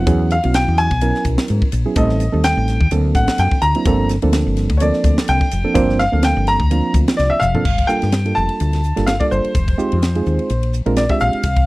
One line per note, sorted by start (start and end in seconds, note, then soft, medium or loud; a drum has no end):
0.00 0.28 F#5 medium
0.07 0.38 E2 loud
0.07 0.35 F#3 medium
0.07 0.35 B3 medium
0.07 0.35 C#4 medium
0.07 0.36 E4 medium
0.07 0.36 G#4 loud
0.07 kick loud
0.07 hi-hat pedal medium
0.07 ride medium
0.30 0.55 F5 medium
0.30 hi-hat pedal medium
0.30 ride medium
0.43 0.65 B1 medium
0.43 0.90 F#3 medium
0.43 0.90 B3 medium
0.43 0.90 C#4 medium
0.43 0.91 E4 medium
0.43 0.91 F#4 medium
0.43 ride medium
0.54 0.78 G5 medium
0.54 snare loud
0.54 hi-hat pedal medium
0.54 ride medium
0.68 0.88 E2 medium
0.78 1.22 G#5 loud
0.78 hi-hat pedal medium
0.78 ride medium
0.91 1.11 B1 medium
0.91 kick medium
0.91 ride medium
1.01 1.68 F#3 medium
1.01 1.68 B3 medium
1.01 1.68 C#4 medium
1.01 1.68 E4 medium
1.01 1.68 A#4 medium
1.01 hi-hat pedal medium
1.01 ride medium
1.15 snare soft
1.24 1.37 B1 medium
1.24 kick medium
1.24 hi-hat pedal medium
1.24 ride medium
1.38 snare loud
1.48 1.61 G#2 medium
1.48 hi-hat pedal medium
1.48 ride medium
1.62 muted fretless electric bass stroke soft
1.62 kick medium
1.72 1.84 A#1 medium
1.72 hi-hat pedal medium
1.72 ride medium
1.86 1.94 F#3 medium
1.86 1.94 B3 medium
1.86 1.94 C#4 medium
1.86 1.95 E4 medium
1.86 1.95 G#4 medium
1.96 2.28 A1 loud
1.96 2.25 G3 medium
1.96 2.25 A3 medium
1.96 2.25 C4 medium
1.96 2.25 D#4 medium
1.96 2.25 A4 loud
1.96 2.41 D#5 medium
1.96 kick loud
1.96 hi-hat pedal medium
1.96 ride medium
2.09 snare soft
2.20 hi-hat pedal medium
2.20 ride medium
2.32 2.54 D#2 medium
2.32 2.79 G3 medium
2.32 2.79 A3 medium
2.32 2.80 C4 medium
2.32 2.80 D#4 medium
2.32 2.79 A4 medium
2.44 2.88 G5 loud
2.44 snare loud
2.44 hi-hat pedal medium
2.44 ride medium
2.57 2.77 A1 medium
2.68 snare soft
2.68 hi-hat pedal medium
2.68 ride medium
2.81 2.90 D#2 medium
2.81 kick medium
2.91 3.12 D2 loud
2.91 3.57 F#3 medium
2.91 3.57 A#3 medium
2.91 3.57 C4 medium
2.91 3.57 D4 medium
2.91 3.57 A4 medium
2.91 hi-hat pedal medium
2.91 ride medium
3.15 3.26 A1 medium
3.15 3.38 F#5 medium
3.15 kick medium
3.15 hi-hat pedal medium
3.15 ride medium
3.28 snare loud
3.28 ride medium
3.38 3.50 F#2 medium
3.38 3.62 G5 medium
3.38 hi-hat pedal medium
3.38 ride medium
3.51 kick medium
3.62 3.73 D2 medium
3.62 4.06 A#5 loud
3.62 hi-hat pedal medium
3.62 ride medium
3.75 3.84 F#3 medium
3.75 3.84 A#3 medium
3.75 3.84 C4 medium
3.75 3.84 D4 medium
3.75 3.84 E4 medium
3.75 ride medium
3.85 4.17 G1 loud
3.85 4.15 F3 medium
3.85 4.15 A#3 medium
3.85 4.15 C4 medium
3.85 4.15 D4 medium
3.85 4.15 A4 loud
3.85 kick loud
3.85 hi-hat pedal medium
3.85 ride medium
4.09 snare soft
4.09 hi-hat pedal medium
4.09 ride medium
4.22 4.43 D2 medium
4.22 4.69 F3 medium
4.22 4.69 A#3 medium
4.22 4.69 C4 medium
4.22 4.69 D4 medium
4.22 4.69 A4 medium
4.22 ride medium
4.33 snare loud
4.33 hi-hat pedal medium
4.33 ride medium
4.47 4.67 G1 medium
4.57 snare soft
4.57 hi-hat pedal medium
4.57 ride medium
4.70 4.90 D2 medium
4.70 kick medium
4.70 ride medium
4.77 5.47 A#3 medium
4.77 4.81 C#5 soft
4.77 hi-hat pedal medium
4.77 ride medium
4.81 5.47 F3 medium
4.81 5.47 C4 medium
4.81 5.47 D4 medium
4.81 5.47 A4 medium
4.81 5.25 D5 medium
4.93 snare soft
5.04 5.15 D2 medium
5.04 kick medium
5.04 hi-hat pedal medium
5.04 ride medium
5.18 snare loud
5.28 5.40 C2 medium
5.28 5.96 G5 medium
5.28 hi-hat pedal medium
5.28 ride medium
5.41 muted fretless electric bass stroke soft
5.41 kick medium
5.51 5.64 F1 medium
5.51 hi-hat pedal medium
5.51 ride medium
5.64 5.73 F3 medium
5.64 5.73 A#3 medium
5.64 5.73 C4 medium
5.64 5.73 D4 medium
5.64 5.73 A4 medium
5.74 6.06 G1 loud
5.74 6.03 F3 medium
5.74 6.03 A#3 medium
5.74 6.04 C4 medium
5.74 6.04 D4 medium
5.74 6.04 C5 loud
5.74 kick loud
5.74 hi-hat pedal medium
5.74 ride medium
5.89 snare soft
5.99 6.22 F5 medium
5.99 snare soft
5.99 hi-hat pedal medium
5.99 ride medium
6.12 6.33 D2 medium
6.12 6.59 F3 medium
6.12 6.59 A#3 medium
6.12 6.59 C4 medium
6.12 6.59 D4 medium
6.12 6.59 A4 medium
6.23 6.47 G5 medium
6.23 snare loud
6.23 hi-hat pedal medium
6.23 ride medium
6.37 6.56 G1 medium
6.47 6.91 A#5 loud
6.47 snare soft
6.47 hi-hat pedal medium
6.47 ride medium
6.60 6.80 D2 medium
6.60 kick medium
6.71 7.36 F3 medium
6.71 7.36 A#3 medium
6.71 7.37 C4 medium
6.71 7.37 D4 medium
6.71 7.37 F4 medium
6.71 hi-hat pedal medium
6.71 ride medium
6.94 7.05 D2 medium
6.94 kick medium
6.94 hi-hat pedal medium
6.94 ride medium
7.08 snare loud
7.08 ride medium
7.17 7.30 C2 medium
7.17 7.31 D5 medium
7.17 snare medium
7.17 hi-hat pedal medium
7.30 7.41 E5 medium
7.40 7.53 F1 medium
7.40 7.89 F5 loud
7.40 hi-hat pedal medium
7.40 mid tom medium
7.55 7.63 F3 medium
7.55 7.63 A#3 medium
7.55 7.63 C4 medium
7.55 7.63 D4 medium
7.55 7.63 A4 loud
7.55 floor tom medium
7.65 7.85 G1 medium
7.65 kick medium
7.65 crash medium
7.78 kick medium
7.78 ride medium
7.87 8.08 G3 medium
7.87 8.08 A#3 medium
7.87 8.08 D4 medium
7.87 8.08 F4 medium
7.87 8.08 A4 medium
7.87 8.37 G5 medium
7.87 muted fretless electric bass stroke soft
7.87 hi-hat pedal medium
8.02 8.32 G2 medium
8.02 snare soft
8.02 ride medium
8.12 8.19 A4 soft
8.12 snare loud
8.12 hi-hat pedal medium
8.12 ride medium
8.25 8.80 G3 medium
8.25 8.80 A#3 medium
8.25 8.81 D4 medium
8.25 8.81 F4 medium
8.25 8.81 A4 medium
8.25 ride medium
8.35 8.48 F1 medium
8.35 9.09 A5 loud
8.35 hi-hat pedal medium
8.49 ride medium
8.60 8.92 D2 medium
8.60 hi-hat pedal medium
8.60 ride medium
8.73 snare soft
8.73 ride medium
8.83 hi-hat pedal medium
8.96 9.18 G1 medium
8.96 9.15 G3 medium
8.96 9.15 A#3 medium
8.96 9.15 D4 medium
8.96 9.15 F4 medium
8.96 9.15 A4 medium
8.96 snare soft
8.96 ride medium
9.07 9.19 F5 medium
9.07 snare loud
9.07 hi-hat pedal medium
9.07 ride medium
9.20 9.55 G3 medium
9.20 9.55 A#3 medium
9.20 9.55 D4 medium
9.20 9.55 F4 medium
9.20 9.55 A4 medium
9.20 9.25 D5 medium
9.20 kick medium
9.20 ride medium
9.31 9.43 G1 medium
9.31 10.70 C5 medium
9.31 hi-hat pedal medium
9.44 ride medium
9.55 9.75 F1 medium
9.55 kick loud
9.55 hi-hat pedal medium
9.55 ride medium
9.68 kick medium
9.68 ride medium
9.78 9.97 G#3 medium
9.78 9.98 C4 medium
9.78 9.97 D#4 medium
9.78 9.97 F4 medium
9.78 9.98 G4 medium
9.78 muted fretless electric bass stroke soft
9.78 hi-hat pedal medium
9.92 10.21 F2 medium
9.92 ride medium
10.02 snare loud
10.02 hi-hat pedal medium
10.02 ride medium
10.15 10.50 G#3 medium
10.15 10.50 C4 medium
10.15 10.50 D#4 medium
10.15 10.50 F4 medium
10.15 10.50 G#4 medium
10.15 ride medium
10.26 10.37 D#2 medium
10.26 hi-hat pedal medium
10.39 ride soft
10.50 10.81 A#1 medium
10.50 hi-hat pedal medium
10.50 ride medium
10.63 ride medium
10.73 hi-hat pedal medium
10.86 11.06 A#1 medium
10.86 11.04 G#3 medium
10.86 11.04 C4 medium
10.86 11.04 D4 medium
10.86 11.05 F4 medium
10.86 11.05 A#4 medium
10.86 ride soft
10.96 11.10 D5 medium
10.96 snare medium
10.96 hi-hat pedal medium
10.96 ride medium
11.09 11.44 G#3 medium
11.09 11.44 C4 medium
11.09 11.44 D4 medium
11.09 11.44 F4 medium
11.09 11.45 G4 medium
11.09 11.15 E5 medium
11.09 kick medium
11.09 ride medium
11.20 11.32 A#1 medium
11.20 11.66 F5 loud
11.20 hi-hat pedal medium
11.33 muted fretless electric bass stroke soft
11.33 ride medium
11.43 11.64 C2 medium
11.43 kick loud
11.43 hi-hat pedal medium
11.43 ride medium
11.56 kick medium
11.56 ride medium